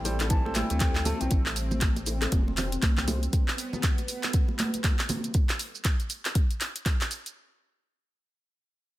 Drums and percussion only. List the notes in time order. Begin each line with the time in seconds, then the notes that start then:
0.05 open hi-hat, high bongo, low bongo, shaker
0.20 clap, closed hi-hat, high bongo, muted conga, shaker
0.30 kick, closed hi-hat, low bongo, shaker
0.46 muted conga
0.55 clap, open hi-hat, high conga, shaker
0.70 closed hi-hat, high conga, shaker
0.80 kick, clap, closed hi-hat, muted conga, shaker
0.95 clap
1.05 open hi-hat, muted conga, high conga, low conga, shaker
1.21 closed hi-hat, low bongo, shaker
1.31 kick, closed hi-hat, low bongo, muted conga, shaker
1.46 clap
1.56 open hi-hat, shaker
1.71 muted conga, high conga, low conga, shaker
1.81 kick, clap, closed hi-hat, shaker
1.96 closed hi-hat, muted conga, shaker
2.06 open hi-hat, high bongo, low bongo, shaker
2.22 clap, closed hi-hat, high bongo, muted conga, shaker
2.32 kick, closed hi-hat, high conga, low conga, shaker
2.48 muted conga
2.57 clap, open hi-hat, low conga, shaker
2.72 closed hi-hat, shaker
2.82 kick, clap, closed hi-hat, muted conga, high conga, shaker
2.97 clap, low conga
3.08 open hi-hat, high bongo, muted conga, high conga, shaker
3.23 closed hi-hat, shaker
3.33 kick, closed hi-hat, muted conga, shaker
3.48 clap
3.58 open hi-hat, shaker
3.73 muted conga, high conga, low conga, shaker
3.83 kick, clap, closed hi-hat, shaker
3.98 closed hi-hat, muted conga, shaker
4.08 open hi-hat, shaker
4.23 clap, closed hi-hat, muted conga, shaker
4.33 kick, closed hi-hat, shaker
4.48 muted conga
4.59 clap, open hi-hat, high conga, shaker
4.74 closed hi-hat, high conga, shaker
4.84 kick, clap, closed hi-hat, muted conga, shaker
4.99 clap
5.09 open hi-hat, muted conga, high conga, low conga, shaker
5.24 closed hi-hat, shaker
5.34 kick, closed hi-hat, shaker
5.49 clap, closed hi-hat
5.59 open hi-hat, shaker
5.75 shaker
5.85 kick, clap, closed hi-hat, shaker
6.00 closed hi-hat, shaker
6.10 open hi-hat, shaker
6.25 clap, closed hi-hat, shaker
6.35 kick, closed hi-hat, shaker
6.51 closed hi-hat, shaker
6.61 clap, open hi-hat, shaker
6.76 closed hi-hat, shaker
6.86 kick, clap, closed hi-hat, shaker
7.01 clap, closed hi-hat
7.11 open hi-hat, shaker
7.26 closed hi-hat, shaker